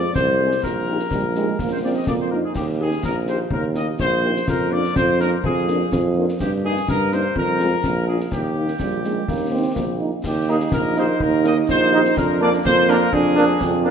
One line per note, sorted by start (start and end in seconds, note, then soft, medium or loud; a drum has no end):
0.00 0.16 D5 medium
0.15 0.56 C2 medium
0.15 0.60 C5 medium
0.15 concert bass drum medium
0.15 snare medium
0.39 0.48 G#3 soft
0.39 0.48 C4 soft
0.39 0.49 G#4 soft
0.51 snare soft
0.63 1.04 A#1 medium
0.63 1.67 A#4 medium
0.63 concert bass drum medium
0.63 snare medium
0.88 0.96 A#3 soft
0.88 0.96 D#4 soft
0.88 0.97 G4 soft
0.99 snare soft
1.11 1.52 A#1 medium
1.11 1.23 G3 medium
1.11 concert bass drum medium
1.11 snare medium
1.35 1.58 G#3 medium
1.35 1.45 A#3 soft
1.35 1.45 D#4 soft
1.35 1.45 G4 soft
1.35 snare medium
1.59 2.00 A#1 medium
1.59 1.83 A#3 medium
1.59 concert bass drum medium
1.59 snare medium
1.72 1.77 C5 medium
1.84 1.93 A#3 soft
1.84 2.06 C4 medium
1.84 1.94 D4 soft
1.84 1.93 F4 soft
1.84 1.90 D5 medium
1.95 2.07 D#5 medium
2.07 2.44 F2 medium
2.07 2.30 A#3 medium
2.07 2.13 D5 medium
2.07 concert bass drum medium
2.07 snare medium
2.19 2.31 C5 medium
2.31 2.41 A#3 soft
2.31 2.40 D4 soft
2.31 2.55 D#4 medium
2.31 2.41 F4 soft
2.31 2.36 A#4 medium
2.44 2.55 G#4 medium
2.55 2.96 D#2 medium
2.55 2.66 G4 medium
2.55 concert bass drum medium
2.55 snare medium
2.55 crash soft
2.80 2.89 A#3 soft
2.80 2.88 D#4 soft
2.80 2.88 G4 medium
2.80 3.03 G#4 medium
2.91 snare soft
3.03 3.43 A#1 medium
3.03 3.15 A#4 medium
3.03 concert bass drum medium
3.03 snare medium
3.27 3.37 A#3 soft
3.27 3.37 D#4 soft
3.27 3.37 G4 soft
3.27 3.39 C5 medium
3.27 snare soft
3.50 3.92 D#2 medium
3.50 3.62 A#4 medium
3.50 concert bass drum medium
3.75 3.85 A#3 soft
3.75 3.85 D#4 medium
3.75 3.85 G4 medium
3.75 3.87 D#5 medium
3.75 snare medium
3.99 4.40 A#1 medium
3.99 4.45 C5 loud
3.99 concert bass drum medium
3.99 snare medium
4.23 4.32 A#3 medium
4.23 4.32 D#4 medium
4.23 4.32 G4 soft
4.36 snare medium
4.47 4.88 F2 medium
4.47 4.72 A#4 medium
4.47 concert bass drum medium
4.47 snare medium
4.70 4.79 A#3 medium
4.70 4.80 D4 medium
4.70 4.79 F4 medium
4.70 4.96 D5 medium
4.84 snare soft
4.95 5.36 F2 medium
4.95 5.18 C5 medium
4.95 concert bass drum medium
4.95 snare medium
5.19 5.28 A#3 medium
5.19 5.28 D4 medium
5.19 5.28 F4 medium
5.19 5.31 A#4 medium
5.19 snare medium
5.43 5.84 F2 medium
5.43 6.12 G#4 medium
5.43 concert bass drum medium
5.68 5.76 A#3 medium
5.68 5.77 D4 medium
5.68 5.76 F4 medium
5.68 snare medium
5.91 6.32 F2 medium
5.91 concert bass drum medium
5.91 snare medium
6.16 6.25 A#3 medium
6.16 6.25 D4 medium
6.16 6.25 F4 medium
6.29 snare medium
6.40 6.80 G2 medium
6.40 6.51 G4 medium
6.40 concert bass drum medium
6.40 snare medium
6.40 crash soft
6.64 6.73 A#3 medium
6.64 6.73 D#4 medium
6.64 6.87 G#4 medium
6.76 snare soft
6.88 7.28 G2 medium
6.88 7.11 A#4 medium
6.88 concert bass drum medium
6.88 snare medium
7.12 7.22 A#3 medium
7.12 7.22 D#4 medium
7.12 7.37 C5 medium
7.12 snare medium
7.36 7.76 F2 medium
7.36 8.05 A#4 medium
7.36 concert bass drum medium
7.59 7.68 G#3 soft
7.59 7.68 C4 medium
7.59 7.69 F4 medium
7.59 snare medium
7.84 8.24 A#1 medium
7.84 concert bass drum medium
7.84 snare medium
8.08 8.17 A#3 soft
8.08 8.17 D4 soft
8.08 8.17 F4 soft
8.08 8.19 G#4 medium
8.20 snare soft
8.32 8.73 D#2 medium
8.32 9.97 G4 medium
8.32 concert bass drum medium
8.32 snare medium
8.57 8.65 A#3 soft
8.57 8.65 D#4 soft
8.68 snare soft
8.79 9.21 A#1 medium
8.79 9.02 G3 medium
8.79 concert bass drum medium
8.79 snare medium
9.04 9.27 G#3 medium
9.04 9.13 A#3 soft
9.04 9.14 D#4 soft
9.04 snare soft
9.28 9.69 D#2 medium
9.28 9.51 A#3 medium
9.28 concert bass drum medium
9.28 snare medium
9.51 9.62 A#3 soft
9.51 9.74 C4 medium
9.51 9.62 D#4 soft
9.75 10.13 A#1 medium
9.75 9.86 A#3 medium
9.75 concert bass drum medium
9.75 snare medium
10.00 10.09 A#3 soft
10.00 10.11 D#4 medium
10.00 10.09 D#4 soft
10.24 10.65 D#2 medium
10.24 12.18 D#4 medium
10.24 10.47 G4 medium
10.24 concert bass drum medium
10.24 snare medium
10.24 crash soft
10.48 10.57 A#3 medium
10.48 10.57 A#3 soft
10.48 10.57 D#4 medium
10.48 10.58 D#4 medium
10.48 10.58 G4 soft
10.48 10.73 G#4 medium
10.60 snare soft
10.72 11.13 A#1 medium
10.72 10.95 A#4 medium
10.72 concert bass drum medium
10.72 snare medium
10.96 11.05 A#3 soft
10.96 11.05 A#3 medium
10.96 11.05 D#4 soft
10.96 11.05 D#4 medium
10.96 11.05 G4 soft
10.96 11.20 C5 medium
10.96 snare soft
11.20 11.61 D#2 medium
11.20 11.45 A#4 medium
11.20 concert bass drum medium
11.44 11.53 A#3 medium
11.44 11.53 D#4 medium
11.44 11.53 G4 medium
11.44 11.57 D#5 medium
11.44 snare medium
11.69 12.09 A#1 medium
11.69 12.14 C5 loud
11.69 concert bass drum medium
11.69 snare medium
11.91 12.01 A#3 medium
11.91 12.02 A#3 medium
11.91 12.00 D#4 medium
11.91 12.01 D#4 medium
11.91 12.01 G4 medium
12.05 snare medium
12.17 12.57 F2 medium
12.17 12.65 D4 medium
12.17 12.41 A#4 medium
12.17 concert bass drum medium
12.17 snare medium
12.40 12.49 A#3 medium
12.40 12.49 D4 medium
12.40 12.49 A#4 medium
12.40 12.52 D5 loud
12.53 snare soft
12.65 13.05 F2 medium
12.65 13.10 A#3 medium
12.65 12.88 C5 loud
12.65 concert bass drum medium
12.65 snare medium
12.88 12.97 A#3 medium
12.88 12.98 A#3 medium
12.88 12.97 D4 medium
12.88 12.98 D4 medium
12.88 12.97 A#4 medium
12.88 13.13 A#4 medium
12.88 snare medium
13.13 13.53 F2 medium
13.13 13.62 D4 medium
13.13 13.85 G#4 medium
13.13 concert bass drum medium
13.37 13.46 A#3 medium
13.37 13.45 A#3 medium
13.37 13.45 D4 medium
13.37 13.46 A#4 medium
13.37 snare medium
13.61 13.90 F2 medium
13.61 13.90 C4 medium
13.61 concert bass drum medium
13.61 snare medium
13.83 13.90 A#3 medium
13.83 13.90 D4 medium
13.83 13.90 A#4 medium